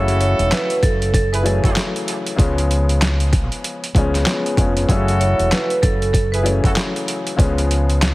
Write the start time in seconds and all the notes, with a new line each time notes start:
Already playing: F#1 C#3 E3 F#3 A3 C#4 E4 F#4 A4
0.08 closed hi-hat
0.20 C#5, closed hi-hat
0.39 E1, closed hi-hat
0.52 B4, snare, clap, closed hi-hat
0.70 closed hi-hat
0.83 F#1 A4, kick, closed hi-hat
1.02 closed hi-hat
1.14 A4, kick, closed hi-hat
1.33 E4 G#4 B4, closed hi-hat
1.43 C#3 E3 F#3 A3 C#4 A4, closed hi-hat
1.64 F#1 E4 F#4 A4, kick, closed hi-hat
1.76 snare, clap, closed hi-hat
1.96 closed hi-hat
2.08 closed hi-hat
2.27 closed hi-hat
2.36 C#2 C#3 F3 G#3 B3 C#4, kick, closed hi-hat
2.58 closed hi-hat
2.71 closed hi-hat
2.89 closed hi-hat
3.02 snare, clap, closed hi-hat
3.20 closed hi-hat
3.33 kick, closed hi-hat
3.52 closed hi-hat
3.64 closed hi-hat
3.84 closed hi-hat
3.95 C#2 C#3 F3 G#3 B3 C#4, kick, closed hi-hat
4.14 snare, closed hi-hat
4.24 C#3 F3 G#3 B3 C#4, snare, clap, closed hi-hat
4.46 closed hi-hat
4.57 F1 C#3 F3 G#3 B3 C#4, kick, closed hi-hat
4.77 closed hi-hat
4.88 F#1 C#3 E3 F#3 A3 C#4 E4 F#4 A4, kick, closed hi-hat
5.08 closed hi-hat
5.20 C#5, closed hi-hat
5.39 E1, closed hi-hat
5.51 B4, snare, clap, closed hi-hat
5.70 closed hi-hat
5.82 F#1 A4, kick, closed hi-hat
6.02 closed hi-hat
6.13 A4, kick, closed hi-hat
6.32 E4 G#4 B4, closed hi-hat
6.43 C#3 E3 F#3 A3 C#4 A4, closed hi-hat
6.64 F#1 E4 F#4 A4, kick, closed hi-hat
6.76 snare, clap, closed hi-hat
6.96 closed hi-hat
7.08 closed hi-hat
7.27 closed hi-hat
7.36 C#2 C#3 F3 G#3 B3 C#4, kick, closed hi-hat
7.58 closed hi-hat
7.71 closed hi-hat
7.90 closed hi-hat
8.02 snare, clap, closed hi-hat